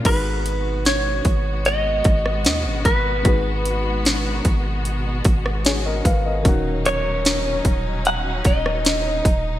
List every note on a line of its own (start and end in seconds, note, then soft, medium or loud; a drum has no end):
0.03 1.21 G#1 loud
0.03 3.20 G#2 medium
0.03 9.59 B2 medium
0.03 6.41 G#3 medium
0.03 3.21 G#3 medium
0.03 6.41 B3 medium
0.03 6.41 F#4 medium
0.03 3.22 F#4 medium
0.03 0.86 B4 medium
0.03 kick loud
0.03 closed hi-hat medium
0.03 crash medium
0.08 3.23 B4 medium
0.46 closed hi-hat medium
0.85 1.66 C#5 medium
0.85 snare loud
0.85 closed hi-hat medium
1.25 2.02 G#1 loud
1.25 kick medium
1.25 closed hi-hat medium
1.65 2.85 D#5 loud
1.65 closed hi-hat medium
2.04 2.47 G#1 loud
2.04 kick loud
2.04 closed hi-hat medium
2.26 cross-stick medium
2.45 2.67 D#2 medium
2.45 snare loud
2.45 closed hi-hat medium
2.66 2.84 G#1 medium
2.85 3.24 G#1 loud
2.85 4.34 B4 medium
2.85 kick medium
2.85 closed hi-hat medium
3.23 4.41 G#1 loud
3.23 6.40 G#2 medium
3.23 6.41 G#3 medium
3.23 6.42 F#4 medium
3.23 kick loud
3.23 closed hi-hat medium
3.28 5.63 B4 medium
3.65 closed hi-hat medium
4.05 snare loud
4.05 closed hi-hat medium
4.34 5.21 A#4 medium
4.45 5.22 G#1 loud
4.45 kick medium
4.45 closed hi-hat medium
4.85 closed hi-hat medium
5.25 6.02 G#1 loud
5.25 kick loud
5.25 closed hi-hat medium
5.46 cross-stick medium
5.65 5.85 G#4 medium
5.65 5.84 C#5 medium
5.65 snare loud
5.65 closed hi-hat medium
5.86 6.05 A#4 medium
5.86 6.04 D#5 medium
6.05 6.44 G#1 loud
6.05 6.25 B4 medium
6.05 6.24 F5 medium
6.05 kick medium
6.05 closed hi-hat medium
6.26 6.64 A#4 medium
6.26 6.63 D#5 medium
6.43 7.61 D#1 loud
6.43 9.59 D#3 medium
6.43 9.59 F#3 medium
6.43 9.59 C#4 medium
6.43 9.59 D#4 medium
6.43 kick loud
6.43 closed hi-hat medium
6.48 9.59 F#4 medium
6.86 7.62 C#5 loud
6.86 closed hi-hat medium
7.25 snare loud
7.25 closed hi-hat medium
7.65 8.42 D#1 loud
7.65 kick medium
7.65 closed hi-hat medium
8.05 8.43 F#5 loud
8.05 closed hi-hat medium
8.45 9.22 D#1 loud
8.45 9.59 D#5 loud
8.45 kick loud
8.45 closed hi-hat medium
8.66 cross-stick medium
8.85 snare loud
8.85 closed hi-hat medium
9.25 9.59 D#1 loud
9.25 kick medium
9.25 closed hi-hat medium